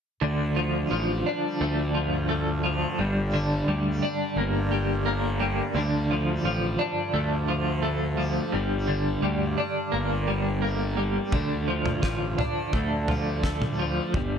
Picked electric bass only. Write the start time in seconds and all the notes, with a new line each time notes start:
0.22 D2
0.91 A1
1.61 D2
2.99 G1
3.68 D2
4.36 G1
5.75 D2
6.44 A1
7.14 D2
8.54 G1
9.23 D2
9.94 G1
11.33 D2
12.03 A1
12.73 D2
14.14 G1